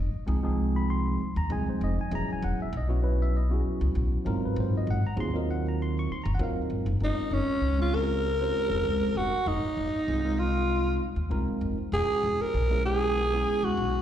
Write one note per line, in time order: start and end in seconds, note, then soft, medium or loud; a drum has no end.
0.00 0.12 F1 medium
0.00 0.24 D#5 loud
0.14 muted upright bass stroke soft
0.26 1.16 C2 medium
0.26 0.39 F3 medium
0.26 0.39 G#3 medium
0.26 0.39 C4 medium
0.26 0.40 D#4 medium
0.26 0.40 G#4 medium
0.43 1.20 F3 medium
0.43 1.20 G#3 medium
0.43 1.20 C4 medium
0.43 1.20 D#4 medium
0.43 1.21 G#4 medium
0.76 0.89 B5 medium
0.90 1.33 C6 loud
1.20 muted upright bass stroke soft
1.36 1.49 D#2 medium
1.36 1.50 A#5 medium
1.50 1.65 C2 loud
1.50 1.95 F3 medium
1.50 1.95 G#3 medium
1.50 1.95 C4 medium
1.50 1.96 D#4 medium
1.50 1.96 G#4 medium
1.50 1.67 G#5 medium
1.66 1.82 C5 medium
1.66 muted upright bass stroke soft
1.81 1.96 F1 medium
1.81 1.98 D#5 loud
2.01 2.13 G#5 medium
2.10 2.27 E1 medium
2.10 2.67 F#3 medium
2.10 2.67 B3 medium
2.10 2.67 C#4 medium
2.10 2.67 E4 medium
2.10 2.68 G#4 medium
2.15 2.29 A#5 loud
2.28 muted upright bass stroke soft
2.33 2.44 G#5 medium
2.42 2.58 E1 medium
2.42 2.59 F#5 medium
2.59 2.74 E5 medium
2.59 muted upright bass stroke soft
2.73 3.61 B1 medium
2.77 2.91 D#5 medium
2.88 2.99 F#3 medium
2.88 2.99 B3 medium
2.88 2.99 C#4 medium
2.88 3.00 E4 medium
2.88 3.00 F#4 medium
3.02 3.36 F#3 medium
3.02 3.36 B3 medium
3.02 3.36 C#4 medium
3.02 3.37 E4 medium
3.02 3.37 B4 medium
3.22 3.35 E5 medium
3.37 3.51 D#5 medium
3.50 4.24 F#3 medium
3.50 4.26 B3 medium
3.50 4.26 C#4 medium
3.50 4.26 E4 medium
3.50 4.26 F#4 medium
3.50 3.61 G#4 medium
3.65 muted upright bass stroke soft
3.81 3.94 C#2 medium
3.95 4.11 B1 medium
4.12 muted upright bass stroke soft
4.25 4.41 G#1 medium
4.25 5.00 F#3 medium
4.25 5.00 C4 medium
4.25 5.00 D#4 medium
4.25 5.00 F4 medium
4.25 5.01 A#4 medium
4.46 4.58 B4 medium
4.56 4.72 G#1 loud
4.56 4.74 C5 medium
4.73 muted upright bass stroke soft
4.77 4.89 D#5 medium
4.87 5.02 G#1 medium
4.87 5.05 F#5 loud
5.03 5.19 A#5 medium
5.03 muted upright bass stroke soft
5.16 6.05 D#2 medium
5.16 5.29 F#3 medium
5.16 5.29 C4 medium
5.16 5.29 D#4 medium
5.16 5.30 F4 medium
5.16 5.30 G#4 medium
5.20 5.35 C6 loud
5.33 6.10 F#3 medium
5.33 6.10 C4 medium
5.33 6.10 D#4 medium
5.33 6.11 F4 medium
5.33 6.11 A#4 medium
5.38 5.50 D#5 medium
5.51 5.66 F#5 medium
5.68 5.81 A#5 medium
5.82 5.97 C6 medium
5.99 6.11 C#6 loud
6.10 6.21 C6 loud
6.10 muted upright bass stroke soft
6.24 6.39 F#1 medium
6.24 6.32 A#5 medium
6.34 6.42 F#5 medium
6.39 6.55 D#2 loud
6.39 6.85 F#3 medium
6.39 6.86 C4 medium
6.39 6.86 D#4 medium
6.39 6.86 F4 medium
6.39 6.86 A#4 medium
6.43 6.61 F5 medium
6.56 muted upright bass stroke soft
6.70 6.85 G#1 medium
6.86 7.00 F#1 medium
7.00 7.16 F#1 medium
7.00 7.57 G#3 medium
7.00 7.57 C4 medium
7.00 7.57 C#4 medium
7.00 7.57 F4 medium
7.00 7.58 A#4 medium
7.04 7.35 D#4 medium
7.31 7.47 F#1 medium
7.31 7.80 C#4 medium
7.61 8.50 C#2 medium
7.78 7.89 G#3 medium
7.78 7.89 C4 medium
7.78 7.90 C#4 medium
7.78 7.90 F4 medium
7.78 7.96 F4 medium
7.78 7.90 C#5 medium
7.92 8.26 G#3 medium
7.92 8.26 C4 medium
7.92 8.26 C#4 medium
7.92 8.27 F4 medium
7.92 8.27 G#4 medium
7.92 9.19 A#4 loud
8.39 9.28 G#3 medium
8.39 9.29 C4 medium
8.39 9.29 C#4 medium
8.39 9.29 F4 medium
8.39 9.29 C5 medium
8.70 8.84 F1 medium
8.85 9.01 C#2 medium
9.02 muted upright bass stroke soft
9.15 9.31 F1 medium
9.15 9.50 F#4 medium
9.46 9.62 F1 medium
9.46 10.41 D#4 medium
9.63 muted upright bass stroke soft
9.77 9.93 F1 medium
9.94 muted upright bass stroke soft
10.07 10.97 C2 medium
10.07 10.20 G#3 medium
10.07 10.20 C4 medium
10.07 10.20 D#4 medium
10.07 10.21 F4 medium
10.07 10.21 G#4 medium
10.24 11.01 G#3 medium
10.24 11.01 C4 medium
10.24 11.01 D#4 medium
10.24 11.02 F4 medium
10.24 11.02 A#4 medium
10.39 11.01 F4 medium
11.00 muted upright bass stroke soft
11.16 11.30 D#2 medium
11.30 11.47 C2 medium
11.30 11.76 G#3 medium
11.30 11.76 C4 medium
11.30 11.76 D#4 medium
11.30 11.77 F4 medium
11.30 11.77 A#4 medium
11.48 muted upright bass stroke soft
11.61 11.77 F1 medium
11.92 12.08 E1 medium
11.92 12.49 G#3 medium
11.92 12.49 B3 medium
11.92 12.49 C#4 medium
11.92 12.49 E4 medium
11.92 12.49 F#4 medium
11.92 12.43 G#4 medium
12.09 muted upright bass stroke soft
12.23 12.39 E1 medium
12.40 12.85 A#4 medium
12.40 muted upright bass stroke soft
12.54 13.43 B1 medium
12.70 12.81 G#3 medium
12.70 12.81 B3 medium
12.70 12.81 C#4 medium
12.70 12.82 E4 medium
12.70 12.82 G#4 medium
12.84 13.18 G#3 medium
12.84 13.19 B3 medium
12.84 13.19 C#4 medium
12.84 13.19 E4 medium
12.84 13.66 G#4 loud
12.84 13.19 G#4 medium
13.32 14.02 G#3 medium
13.32 14.02 B3 medium
13.32 14.02 C#4 medium
13.32 14.02 E4 medium
13.32 14.02 G#4 medium
13.63 13.77 C#2 medium
13.63 14.02 F#4 medium
13.77 13.93 B1 medium
13.95 muted upright bass stroke soft